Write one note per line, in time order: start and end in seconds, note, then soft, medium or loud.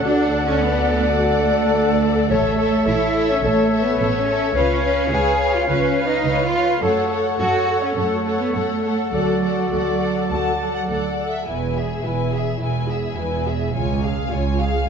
0.00 2.27 A4 soft
0.00 1.99 F#5 soft
0.00 2.26 F#5 soft
0.04 2.27 D2 medium
0.04 0.46 D4 medium
0.04 0.24 F#4 medium
0.04 0.24 D5 medium
0.04 0.46 D5 medium
0.04 2.27 D5 medium
0.47 0.61 C#4 medium
0.47 0.61 C#5 medium
0.61 1.17 B3 medium
0.61 0.97 B4 medium
1.17 2.28 A3 medium
1.17 1.37 F#4 soft
1.17 2.27 A4 medium
1.17 1.37 D5 medium
2.29 2.78 A1 medium
2.29 2.86 A3 medium
2.29 2.88 A4 medium
2.29 2.50 A4 medium
2.29 2.58 A4 medium
2.29 2.57 C#5 medium
2.29 2.50 C#5 medium
2.29 5.70 C#5 medium
2.29 4.51 E5 medium
2.29 2.58 E5 medium
2.58 2.85 A4 medium
2.58 2.86 C#5 soft
2.58 2.87 E5 soft
2.86 3.35 A1 medium
2.86 3.30 E4 medium
2.86 3.15 A4 medium
2.86 3.15 C#5 medium
2.86 3.29 E5 medium
2.86 3.15 E5 soft
3.16 3.42 A4 soft
3.16 3.43 C#5 soft
3.16 3.43 E5 medium
3.29 3.44 C#4 medium
3.29 3.35 C#5 medium
3.42 3.90 A1 medium
3.42 3.81 A3 medium
3.42 3.62 A4 soft
3.42 3.71 A4 medium
3.42 3.79 A4 medium
3.42 3.63 C#5 soft
3.42 3.70 C#5 soft
3.42 3.72 E5 medium
3.72 3.98 A4 soft
3.72 3.98 C#5 soft
3.72 4.00 E5 medium
3.80 4.19 B3 medium
3.80 4.17 B4 medium
3.99 4.47 A1 medium
3.99 4.26 A4 soft
3.99 4.26 C#5 soft
3.99 4.28 E5 soft
4.18 4.55 C#4 medium
4.18 4.54 C#5 medium
4.27 4.55 A4 medium
4.27 4.54 C#5 soft
4.27 4.56 E5 soft
4.54 5.03 C#2 medium
4.54 5.12 C#4 medium
4.54 4.76 F4 medium
4.54 4.82 B4 soft
4.54 4.76 B4 medium
4.54 5.15 C#5 medium
4.54 4.82 C#5 medium
4.54 4.83 F5 soft
4.54 6.84 F5 soft
4.83 5.11 B4 soft
4.83 5.11 C#5 soft
4.83 5.10 F5 soft
5.11 5.60 C#2 medium
5.11 5.55 G#4 medium
5.11 5.40 B4 soft
5.11 5.40 C#5 soft
5.11 5.38 F5 soft
5.11 5.55 G#5 medium
5.40 5.67 B4 soft
5.40 5.67 C#5 soft
5.40 5.67 F5 soft
5.55 5.70 F4 medium
5.55 5.68 F5 medium
5.68 6.17 C#2 medium
5.68 6.06 C#4 medium
5.68 5.89 F4 soft
5.68 5.95 B4 soft
5.68 6.55 B4 soft
5.68 5.89 B4 soft
5.68 6.08 C#5 medium
5.68 5.97 C#5 soft
5.68 5.96 F5 soft
5.96 6.23 B4 soft
5.96 6.24 C#5 soft
5.96 6.25 F5 soft
6.07 6.44 D#4 medium
6.07 6.43 D#5 medium
6.24 6.73 C#2 medium
6.24 6.52 B4 soft
6.24 6.52 C#5 soft
6.24 6.52 F5 soft
6.44 6.82 F4 medium
6.44 6.84 F5 soft
6.54 6.82 B4 soft
6.54 6.81 C#5 soft
6.54 6.82 F5 soft
6.82 7.30 F#2 soft
6.82 7.39 A3 medium
6.82 7.02 F#4 soft
6.82 7.09 A4 medium
6.82 7.02 A4 soft
6.82 7.14 A4 medium
6.82 11.15 A4 soft
6.82 7.09 C#5 soft
6.82 8.84 C#5 soft
6.82 7.10 F#5 soft
7.11 7.38 A4 soft
7.11 7.38 C#5 soft
7.11 7.39 F#5 soft
7.39 7.87 F#2 soft
7.39 7.82 F#4 medium
7.39 7.67 A4 soft
7.39 7.67 C#5 soft
7.39 7.84 F#5 medium
7.39 7.68 F#5 soft
7.68 7.95 A4 soft
7.68 7.96 C#5 soft
7.68 7.97 F#5 soft
7.82 7.97 C#4 soft
7.82 7.97 C#5 soft
7.96 8.45 F#2 soft
7.96 8.40 A3 medium
7.96 8.16 F#4 soft
7.96 8.16 A4 soft
7.96 8.25 A4 soft
7.96 8.38 A4 soft
7.96 8.23 C#5 soft
7.96 8.26 F#5 soft
8.24 8.54 A4 soft
8.24 8.52 C#5 soft
8.24 8.54 F#5 soft
8.39 8.55 B3 soft
8.39 8.55 B4 soft
8.53 9.04 F#2 soft
8.53 9.12 A3 soft
8.53 8.92 A4 soft
8.53 8.83 A4 soft
8.53 8.82 C#5 soft
8.53 8.83 F#5 soft
8.83 9.13 A4 soft
8.83 9.12 C#5 soft
8.83 9.13 F#5 soft
9.11 9.63 D2 soft
9.11 10.86 F#3 soft
9.11 10.86 F#4 soft
9.11 9.35 F#4 soft
9.11 9.43 A4 soft
9.11 9.35 A4 soft
9.11 9.41 D5 soft
9.11 11.15 D5 soft
9.11 9.41 F#5 soft
9.42 9.72 A4 soft
9.42 9.68 D5 soft
9.42 9.71 F#5 soft
9.69 10.21 D2 soft
9.69 10.00 A4 soft
9.69 10.25 D5 soft
9.69 9.99 F#5 soft
10.00 10.29 A4 soft
10.00 10.29 F#5 soft
10.29 10.80 D2 soft
10.29 10.53 F#4 soft
10.29 10.59 A4 soft
10.29 10.52 A4 soft
10.29 10.59 F#5 soft
10.29 10.73 A5 soft
10.60 10.87 A4 soft
10.60 10.88 F#5 soft
10.75 10.81 F#5 soft
10.88 11.38 D2 soft
10.88 11.17 A4 soft
10.88 11.27 D5 soft
10.88 11.18 F#5 soft
11.18 11.47 A4 soft
11.18 11.47 F#5 soft
11.29 11.48 E5 soft
11.46 11.98 E1 soft
11.46 11.98 E2 soft
11.46 11.74 E4 soft
11.46 11.74 B4 soft
11.46 11.73 G#5 soft
11.75 12.04 G#4 soft
11.75 12.05 G#4 soft
11.75 12.05 E5 soft
12.04 12.54 E1 soft
12.04 12.55 E2 soft
12.04 12.33 E4 soft
12.04 12.33 B4 soft
12.04 12.34 G#5 soft
12.32 12.61 G#4 soft
12.32 12.62 E5 soft
12.59 13.11 E1 soft
12.59 13.12 E2 soft
12.59 12.87 E4 soft
12.59 12.88 B4 soft
12.59 12.88 G#5 soft
12.88 13.18 G#4 soft
12.88 13.19 E5 soft
13.17 13.68 E1 soft
13.17 13.69 E2 soft
13.17 13.46 E4 soft
13.17 13.47 B4 soft
13.17 13.46 G#5 soft
13.45 13.75 G#4 soft
13.45 13.75 E5 soft
13.74 14.25 C#2 soft
13.74 14.26 C#2 soft
13.74 14.02 F4 soft
13.74 14.02 C#5 soft
13.74 14.01 G#5 soft
14.02 14.32 G#4 soft
14.02 14.32 F5 soft
14.31 14.82 C#2 soft
14.31 14.60 F4 soft
14.31 14.60 C#5 soft
14.31 14.60 G#5 soft
14.59 14.88 G#4 soft
14.59 14.89 F5 soft